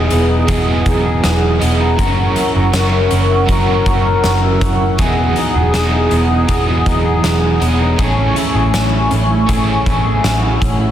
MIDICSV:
0, 0, Header, 1, 7, 480
1, 0, Start_track
1, 0, Key_signature, 4, "major"
1, 0, Tempo, 750000
1, 1274, Time_signature, 4, 2, 24, 8
1, 6984, End_track
2, 0, Start_track
2, 0, Title_t, "Analog synth pad"
2, 0, Program_c, 0, 89
2, 0, Note_on_c, 0, 68, 73
2, 0, Note_on_c, 0, 78, 65
2, 0, Note_on_c, 0, 87, 68
2, 1254, Note_off_c, 0, 87, 0
2, 1256, Note_off_c, 0, 68, 0
2, 1272, Note_on_c, 0, 70, 75
2, 1273, Note_on_c, 0, 85, 65
2, 3174, Note_off_c, 0, 70, 0
2, 3174, Note_off_c, 0, 85, 0
2, 3187, Note_on_c, 0, 87, 74
2, 3188, Note_on_c, 0, 68, 77
2, 5088, Note_off_c, 0, 78, 0
2, 5091, Note_off_c, 0, 87, 0
2, 5092, Note_off_c, 0, 68, 0
2, 5121, Note_on_c, 0, 57, 77
2, 5121, Note_on_c, 0, 85, 75
2, 5122, Note_on_c, 0, 80, 69
2, 6984, Note_off_c, 0, 57, 0
2, 6984, Note_off_c, 0, 80, 0
2, 6984, Note_off_c, 0, 85, 0
2, 6984, End_track
3, 0, Start_track
3, 0, Title_t, "Vibraphone"
3, 0, Program_c, 1, 11
3, 0, Note_on_c, 1, 71, 60
3, 552, Note_on_c, 1, 68, 43
3, 1140, Note_off_c, 1, 71, 0
3, 1487, Note_off_c, 1, 68, 0
3, 4874, Note_on_c, 1, 73, 54
3, 5328, Note_off_c, 1, 73, 0
3, 6315, Note_on_c, 1, 73, 50
3, 6472, Note_on_c, 1, 76, 44
3, 6617, Note_on_c, 1, 78, 43
3, 6984, Note_off_c, 1, 73, 0
3, 6984, Note_off_c, 1, 76, 0
3, 6984, Note_off_c, 1, 78, 0
3, 6984, End_track
4, 0, Start_track
4, 0, Title_t, "Overdriven electric guitar"
4, 0, Program_c, 2, 29
4, 0, Note_on_c, 2, 59, 51
4, 0, Note_on_c, 2, 64, 56
4, 0, Note_on_c, 2, 68, 53
4, 0, Note_on_c, 2, 75, 53
4, 302, Note_on_c, 2, 52, 75
4, 306, Note_off_c, 2, 59, 0
4, 307, Note_on_c, 2, 54, 77
4, 313, Note_off_c, 2, 64, 0
4, 313, Note_off_c, 2, 68, 0
4, 313, Note_on_c, 2, 59, 81
4, 316, Note_on_c, 2, 64, 79
4, 319, Note_off_c, 2, 75, 0
4, 321, Note_on_c, 2, 68, 82
4, 327, Note_on_c, 2, 75, 86
4, 1015, Note_off_c, 2, 75, 0
4, 1023, Note_on_c, 2, 75, 44
4, 1028, Note_off_c, 2, 68, 0
4, 1034, Note_off_c, 2, 59, 0
4, 1035, Note_on_c, 2, 68, 42
4, 1042, Note_off_c, 2, 52, 0
4, 1042, Note_off_c, 2, 64, 0
4, 1049, Note_on_c, 2, 64, 44
4, 1055, Note_off_c, 2, 54, 0
4, 1058, Note_on_c, 2, 59, 39
4, 1261, Note_on_c, 2, 54, 68
4, 1265, Note_off_c, 2, 59, 0
4, 1266, Note_off_c, 2, 64, 0
4, 1268, Note_off_c, 2, 75, 0
4, 1268, Note_on_c, 2, 61, 77
4, 1273, Note_on_c, 2, 64, 74
4, 1274, Note_off_c, 2, 68, 0
4, 1279, Note_on_c, 2, 70, 73
4, 1286, Note_on_c, 2, 73, 81
4, 1735, Note_off_c, 2, 61, 0
4, 1742, Note_on_c, 2, 61, 55
4, 1751, Note_off_c, 2, 64, 0
4, 1754, Note_on_c, 2, 64, 51
4, 1756, Note_off_c, 2, 70, 0
4, 1760, Note_off_c, 2, 73, 0
4, 1764, Note_on_c, 2, 70, 57
4, 1773, Note_off_c, 2, 54, 0
4, 1777, Note_on_c, 2, 73, 63
4, 2215, Note_on_c, 2, 54, 73
4, 2223, Note_off_c, 2, 61, 0
4, 2231, Note_on_c, 2, 61, 83
4, 2234, Note_off_c, 2, 64, 0
4, 2239, Note_off_c, 2, 70, 0
4, 2245, Note_off_c, 2, 73, 0
4, 2246, Note_on_c, 2, 64, 77
4, 2256, Note_on_c, 2, 70, 84
4, 2268, Note_on_c, 2, 73, 89
4, 3184, Note_on_c, 2, 52, 67
4, 3188, Note_off_c, 2, 54, 0
4, 3191, Note_on_c, 2, 54, 69
4, 3192, Note_off_c, 2, 61, 0
4, 3195, Note_on_c, 2, 59, 79
4, 3198, Note_off_c, 2, 64, 0
4, 3200, Note_on_c, 2, 64, 73
4, 3202, Note_off_c, 2, 70, 0
4, 3205, Note_off_c, 2, 73, 0
4, 3205, Note_on_c, 2, 68, 69
4, 3208, Note_on_c, 2, 75, 78
4, 3654, Note_off_c, 2, 59, 0
4, 3662, Note_on_c, 2, 59, 53
4, 3672, Note_off_c, 2, 54, 0
4, 3674, Note_off_c, 2, 64, 0
4, 3676, Note_on_c, 2, 64, 55
4, 3681, Note_off_c, 2, 75, 0
4, 3685, Note_off_c, 2, 68, 0
4, 3687, Note_on_c, 2, 68, 58
4, 3697, Note_on_c, 2, 75, 59
4, 3716, Note_off_c, 2, 52, 0
4, 4144, Note_on_c, 2, 52, 80
4, 4146, Note_off_c, 2, 59, 0
4, 4150, Note_on_c, 2, 54, 81
4, 4153, Note_on_c, 2, 59, 91
4, 4156, Note_off_c, 2, 64, 0
4, 4158, Note_on_c, 2, 64, 82
4, 4159, Note_off_c, 2, 75, 0
4, 4161, Note_off_c, 2, 68, 0
4, 4164, Note_on_c, 2, 68, 90
4, 4167, Note_on_c, 2, 75, 85
4, 4856, Note_off_c, 2, 75, 0
4, 4863, Note_on_c, 2, 75, 49
4, 4872, Note_off_c, 2, 54, 0
4, 4873, Note_off_c, 2, 68, 0
4, 4874, Note_off_c, 2, 59, 0
4, 4876, Note_on_c, 2, 68, 45
4, 4882, Note_off_c, 2, 52, 0
4, 4882, Note_off_c, 2, 64, 0
4, 4887, Note_on_c, 2, 64, 39
4, 4897, Note_on_c, 2, 59, 38
4, 5098, Note_on_c, 2, 57, 62
4, 5108, Note_off_c, 2, 75, 0
4, 5111, Note_off_c, 2, 59, 0
4, 5113, Note_on_c, 2, 61, 72
4, 5115, Note_off_c, 2, 68, 0
4, 5118, Note_off_c, 2, 64, 0
4, 5126, Note_on_c, 2, 64, 78
4, 5137, Note_on_c, 2, 68, 72
4, 5147, Note_on_c, 2, 73, 76
4, 6055, Note_off_c, 2, 57, 0
4, 6062, Note_on_c, 2, 57, 67
4, 6070, Note_off_c, 2, 61, 0
4, 6077, Note_on_c, 2, 61, 72
4, 6087, Note_off_c, 2, 64, 0
4, 6089, Note_on_c, 2, 64, 87
4, 6090, Note_off_c, 2, 73, 0
4, 6100, Note_off_c, 2, 68, 0
4, 6102, Note_on_c, 2, 68, 85
4, 6113, Note_on_c, 2, 73, 81
4, 6984, Note_off_c, 2, 57, 0
4, 6984, Note_off_c, 2, 61, 0
4, 6984, Note_off_c, 2, 64, 0
4, 6984, Note_off_c, 2, 68, 0
4, 6984, Note_off_c, 2, 73, 0
4, 6984, End_track
5, 0, Start_track
5, 0, Title_t, "Clean electric guitar"
5, 0, Program_c, 3, 27
5, 0, Note_on_c, 3, 52, 80
5, 0, Note_on_c, 3, 59, 49
5, 0, Note_on_c, 3, 63, 52
5, 0, Note_on_c, 3, 68, 52
5, 65, Note_off_c, 3, 59, 0
5, 73, Note_on_c, 3, 59, 58
5, 182, Note_off_c, 3, 63, 0
5, 189, Note_on_c, 3, 63, 48
5, 307, Note_off_c, 3, 68, 0
5, 308, Note_off_c, 3, 52, 0
5, 311, Note_on_c, 3, 52, 79
5, 314, Note_on_c, 3, 68, 63
5, 420, Note_off_c, 3, 59, 0
5, 428, Note_on_c, 3, 59, 51
5, 544, Note_off_c, 3, 63, 0
5, 551, Note_on_c, 3, 63, 55
5, 664, Note_off_c, 3, 68, 0
5, 671, Note_on_c, 3, 68, 59
5, 782, Note_off_c, 3, 59, 0
5, 790, Note_on_c, 3, 59, 53
5, 904, Note_off_c, 3, 63, 0
5, 911, Note_on_c, 3, 63, 52
5, 1023, Note_off_c, 3, 59, 0
5, 1030, Note_on_c, 3, 59, 52
5, 1142, Note_off_c, 3, 63, 0
5, 1150, Note_on_c, 3, 63, 51
5, 1269, Note_on_c, 3, 54, 82
5, 1270, Note_off_c, 3, 68, 0
5, 1273, Note_on_c, 3, 70, 65
5, 1319, Note_off_c, 3, 63, 0
5, 1320, Note_off_c, 3, 59, 0
5, 1390, Note_on_c, 3, 61, 55
5, 1508, Note_on_c, 3, 64, 54
5, 1620, Note_off_c, 3, 70, 0
5, 1627, Note_on_c, 3, 70, 53
5, 1646, Note_off_c, 3, 52, 0
5, 1740, Note_off_c, 3, 61, 0
5, 1748, Note_on_c, 3, 61, 47
5, 1865, Note_off_c, 3, 64, 0
5, 1867, Note_on_c, 3, 64, 55
5, 1982, Note_off_c, 3, 61, 0
5, 1990, Note_on_c, 3, 61, 57
5, 2109, Note_off_c, 3, 64, 0
5, 2112, Note_on_c, 3, 64, 52
5, 2230, Note_off_c, 3, 54, 0
5, 2230, Note_off_c, 3, 70, 0
5, 2232, Note_on_c, 3, 54, 72
5, 2237, Note_on_c, 3, 70, 65
5, 2345, Note_off_c, 3, 61, 0
5, 2353, Note_on_c, 3, 61, 54
5, 2468, Note_off_c, 3, 64, 0
5, 2471, Note_on_c, 3, 64, 51
5, 2586, Note_off_c, 3, 70, 0
5, 2594, Note_on_c, 3, 70, 57
5, 2703, Note_off_c, 3, 61, 0
5, 2710, Note_on_c, 3, 61, 53
5, 2830, Note_off_c, 3, 64, 0
5, 2832, Note_on_c, 3, 64, 56
5, 2946, Note_off_c, 3, 61, 0
5, 2954, Note_on_c, 3, 61, 55
5, 3070, Note_off_c, 3, 64, 0
5, 3072, Note_on_c, 3, 64, 54
5, 3194, Note_off_c, 3, 70, 0
5, 3194, Note_on_c, 3, 52, 74
5, 3197, Note_on_c, 3, 68, 71
5, 3242, Note_off_c, 3, 61, 0
5, 3313, Note_on_c, 3, 59, 52
5, 3428, Note_off_c, 3, 64, 0
5, 3431, Note_on_c, 3, 63, 59
5, 3548, Note_off_c, 3, 68, 0
5, 3551, Note_on_c, 3, 68, 57
5, 3570, Note_off_c, 3, 54, 0
5, 3662, Note_off_c, 3, 59, 0
5, 3670, Note_on_c, 3, 59, 52
5, 3783, Note_off_c, 3, 63, 0
5, 3791, Note_on_c, 3, 63, 53
5, 3906, Note_off_c, 3, 59, 0
5, 3914, Note_on_c, 3, 59, 58
5, 4025, Note_off_c, 3, 63, 0
5, 4033, Note_on_c, 3, 63, 53
5, 4147, Note_off_c, 3, 52, 0
5, 4150, Note_on_c, 3, 52, 76
5, 4151, Note_off_c, 3, 68, 0
5, 4153, Note_on_c, 3, 68, 67
5, 4260, Note_off_c, 3, 59, 0
5, 4267, Note_on_c, 3, 59, 52
5, 4381, Note_off_c, 3, 63, 0
5, 4389, Note_on_c, 3, 63, 54
5, 4507, Note_off_c, 3, 68, 0
5, 4510, Note_on_c, 3, 68, 62
5, 4621, Note_off_c, 3, 59, 0
5, 4629, Note_on_c, 3, 59, 51
5, 4740, Note_off_c, 3, 63, 0
5, 4747, Note_on_c, 3, 63, 53
5, 4861, Note_off_c, 3, 59, 0
5, 4868, Note_on_c, 3, 59, 59
5, 4982, Note_off_c, 3, 63, 0
5, 4990, Note_on_c, 3, 63, 52
5, 5111, Note_on_c, 3, 57, 77
5, 5113, Note_off_c, 3, 68, 0
5, 5115, Note_on_c, 3, 68, 68
5, 5159, Note_off_c, 3, 59, 0
5, 5160, Note_off_c, 3, 63, 0
5, 5232, Note_on_c, 3, 61, 52
5, 5352, Note_on_c, 3, 64, 57
5, 5467, Note_off_c, 3, 68, 0
5, 5469, Note_on_c, 3, 68, 58
5, 5586, Note_off_c, 3, 61, 0
5, 5593, Note_on_c, 3, 61, 49
5, 5707, Note_off_c, 3, 64, 0
5, 5709, Note_on_c, 3, 64, 52
5, 5821, Note_off_c, 3, 61, 0
5, 5829, Note_on_c, 3, 61, 58
5, 5949, Note_off_c, 3, 64, 0
5, 5952, Note_on_c, 3, 64, 50
5, 6063, Note_off_c, 3, 57, 0
5, 6071, Note_on_c, 3, 57, 77
5, 6072, Note_off_c, 3, 68, 0
5, 6075, Note_on_c, 3, 68, 64
5, 6183, Note_off_c, 3, 61, 0
5, 6191, Note_on_c, 3, 61, 50
5, 6310, Note_off_c, 3, 64, 0
5, 6313, Note_on_c, 3, 64, 55
5, 6390, Note_off_c, 3, 52, 0
5, 6430, Note_off_c, 3, 68, 0
5, 6432, Note_on_c, 3, 68, 59
5, 6542, Note_off_c, 3, 61, 0
5, 6550, Note_on_c, 3, 61, 51
5, 6667, Note_off_c, 3, 64, 0
5, 6670, Note_on_c, 3, 64, 49
5, 6785, Note_off_c, 3, 61, 0
5, 6793, Note_on_c, 3, 61, 52
5, 6910, Note_off_c, 3, 64, 0
5, 6913, Note_on_c, 3, 64, 53
5, 6984, Note_off_c, 3, 57, 0
5, 6984, Note_off_c, 3, 61, 0
5, 6984, Note_off_c, 3, 64, 0
5, 6984, Note_off_c, 3, 68, 0
5, 6984, End_track
6, 0, Start_track
6, 0, Title_t, "Picked electric bass"
6, 0, Program_c, 4, 34
6, 78, Note_on_c, 4, 28, 82
6, 287, Note_off_c, 4, 28, 0
6, 311, Note_on_c, 4, 28, 83
6, 523, Note_off_c, 4, 28, 0
6, 551, Note_on_c, 4, 28, 83
6, 763, Note_off_c, 4, 28, 0
6, 798, Note_on_c, 4, 28, 79
6, 1007, Note_off_c, 4, 28, 0
6, 1038, Note_on_c, 4, 28, 85
6, 1247, Note_off_c, 4, 28, 0
6, 1272, Note_on_c, 4, 30, 89
6, 1484, Note_off_c, 4, 30, 0
6, 1638, Note_on_c, 4, 30, 81
6, 1741, Note_off_c, 4, 30, 0
6, 1756, Note_on_c, 4, 30, 92
6, 1966, Note_off_c, 4, 30, 0
6, 1996, Note_on_c, 4, 30, 91
6, 2206, Note_off_c, 4, 30, 0
6, 2231, Note_on_c, 4, 30, 88
6, 2443, Note_off_c, 4, 30, 0
6, 2471, Note_on_c, 4, 30, 83
6, 2684, Note_off_c, 4, 30, 0
6, 2718, Note_on_c, 4, 30, 87
6, 2927, Note_off_c, 4, 30, 0
6, 2954, Note_on_c, 4, 30, 90
6, 3165, Note_off_c, 4, 30, 0
6, 3193, Note_on_c, 4, 28, 89
6, 3404, Note_off_c, 4, 28, 0
6, 3555, Note_on_c, 4, 28, 86
6, 3660, Note_off_c, 4, 28, 0
6, 3675, Note_on_c, 4, 28, 91
6, 3886, Note_off_c, 4, 28, 0
6, 3914, Note_on_c, 4, 28, 88
6, 4125, Note_off_c, 4, 28, 0
6, 4394, Note_on_c, 4, 28, 92
6, 4605, Note_off_c, 4, 28, 0
6, 4637, Note_on_c, 4, 28, 91
6, 4847, Note_off_c, 4, 28, 0
6, 4872, Note_on_c, 4, 28, 90
6, 5084, Note_off_c, 4, 28, 0
6, 5112, Note_on_c, 4, 33, 85
6, 5324, Note_off_c, 4, 33, 0
6, 5472, Note_on_c, 4, 33, 85
6, 5578, Note_off_c, 4, 33, 0
6, 5596, Note_on_c, 4, 33, 81
6, 5806, Note_off_c, 4, 33, 0
6, 5838, Note_on_c, 4, 33, 77
6, 6047, Note_off_c, 4, 33, 0
6, 6071, Note_on_c, 4, 33, 89
6, 6284, Note_off_c, 4, 33, 0
6, 6313, Note_on_c, 4, 33, 74
6, 6525, Note_off_c, 4, 33, 0
6, 6554, Note_on_c, 4, 33, 90
6, 6765, Note_off_c, 4, 33, 0
6, 6795, Note_on_c, 4, 33, 83
6, 6984, Note_off_c, 4, 33, 0
6, 6984, End_track
7, 0, Start_track
7, 0, Title_t, "Drums"
7, 67, Note_on_c, 9, 42, 48
7, 131, Note_off_c, 9, 42, 0
7, 309, Note_on_c, 9, 42, 65
7, 311, Note_on_c, 9, 36, 76
7, 373, Note_off_c, 9, 42, 0
7, 375, Note_off_c, 9, 36, 0
7, 549, Note_on_c, 9, 42, 46
7, 551, Note_on_c, 9, 36, 78
7, 613, Note_off_c, 9, 42, 0
7, 615, Note_off_c, 9, 36, 0
7, 791, Note_on_c, 9, 38, 93
7, 793, Note_on_c, 9, 42, 62
7, 855, Note_off_c, 9, 38, 0
7, 857, Note_off_c, 9, 42, 0
7, 1034, Note_on_c, 9, 42, 50
7, 1098, Note_off_c, 9, 42, 0
7, 1273, Note_on_c, 9, 36, 94
7, 1273, Note_on_c, 9, 42, 61
7, 1337, Note_off_c, 9, 36, 0
7, 1337, Note_off_c, 9, 42, 0
7, 1510, Note_on_c, 9, 42, 51
7, 1574, Note_off_c, 9, 42, 0
7, 1750, Note_on_c, 9, 42, 70
7, 1751, Note_on_c, 9, 38, 101
7, 1814, Note_off_c, 9, 42, 0
7, 1815, Note_off_c, 9, 38, 0
7, 1988, Note_on_c, 9, 42, 46
7, 2052, Note_off_c, 9, 42, 0
7, 2231, Note_on_c, 9, 42, 66
7, 2232, Note_on_c, 9, 36, 80
7, 2295, Note_off_c, 9, 42, 0
7, 2296, Note_off_c, 9, 36, 0
7, 2471, Note_on_c, 9, 42, 46
7, 2472, Note_on_c, 9, 36, 79
7, 2535, Note_off_c, 9, 42, 0
7, 2536, Note_off_c, 9, 36, 0
7, 2712, Note_on_c, 9, 38, 93
7, 2713, Note_on_c, 9, 42, 65
7, 2776, Note_off_c, 9, 38, 0
7, 2777, Note_off_c, 9, 42, 0
7, 2953, Note_on_c, 9, 36, 82
7, 2955, Note_on_c, 9, 42, 51
7, 3017, Note_off_c, 9, 36, 0
7, 3019, Note_off_c, 9, 42, 0
7, 3191, Note_on_c, 9, 42, 63
7, 3193, Note_on_c, 9, 36, 98
7, 3255, Note_off_c, 9, 42, 0
7, 3257, Note_off_c, 9, 36, 0
7, 3430, Note_on_c, 9, 42, 50
7, 3494, Note_off_c, 9, 42, 0
7, 3672, Note_on_c, 9, 42, 70
7, 3673, Note_on_c, 9, 38, 104
7, 3736, Note_off_c, 9, 42, 0
7, 3737, Note_off_c, 9, 38, 0
7, 3910, Note_on_c, 9, 42, 46
7, 3974, Note_off_c, 9, 42, 0
7, 4151, Note_on_c, 9, 42, 62
7, 4152, Note_on_c, 9, 36, 82
7, 4215, Note_off_c, 9, 42, 0
7, 4216, Note_off_c, 9, 36, 0
7, 4392, Note_on_c, 9, 36, 78
7, 4392, Note_on_c, 9, 42, 44
7, 4456, Note_off_c, 9, 36, 0
7, 4456, Note_off_c, 9, 42, 0
7, 4633, Note_on_c, 9, 38, 104
7, 4634, Note_on_c, 9, 42, 61
7, 4697, Note_off_c, 9, 38, 0
7, 4698, Note_off_c, 9, 42, 0
7, 4874, Note_on_c, 9, 42, 51
7, 4938, Note_off_c, 9, 42, 0
7, 5112, Note_on_c, 9, 42, 58
7, 5113, Note_on_c, 9, 36, 102
7, 5176, Note_off_c, 9, 42, 0
7, 5177, Note_off_c, 9, 36, 0
7, 5352, Note_on_c, 9, 42, 49
7, 5416, Note_off_c, 9, 42, 0
7, 5592, Note_on_c, 9, 42, 62
7, 5593, Note_on_c, 9, 38, 97
7, 5656, Note_off_c, 9, 42, 0
7, 5657, Note_off_c, 9, 38, 0
7, 5829, Note_on_c, 9, 42, 46
7, 5893, Note_off_c, 9, 42, 0
7, 6072, Note_on_c, 9, 42, 68
7, 6073, Note_on_c, 9, 36, 79
7, 6136, Note_off_c, 9, 42, 0
7, 6137, Note_off_c, 9, 36, 0
7, 6313, Note_on_c, 9, 36, 79
7, 6314, Note_on_c, 9, 42, 42
7, 6377, Note_off_c, 9, 36, 0
7, 6378, Note_off_c, 9, 42, 0
7, 6555, Note_on_c, 9, 38, 95
7, 6557, Note_on_c, 9, 42, 67
7, 6619, Note_off_c, 9, 38, 0
7, 6621, Note_off_c, 9, 42, 0
7, 6795, Note_on_c, 9, 36, 85
7, 6798, Note_on_c, 9, 42, 52
7, 6859, Note_off_c, 9, 36, 0
7, 6862, Note_off_c, 9, 42, 0
7, 6984, End_track
0, 0, End_of_file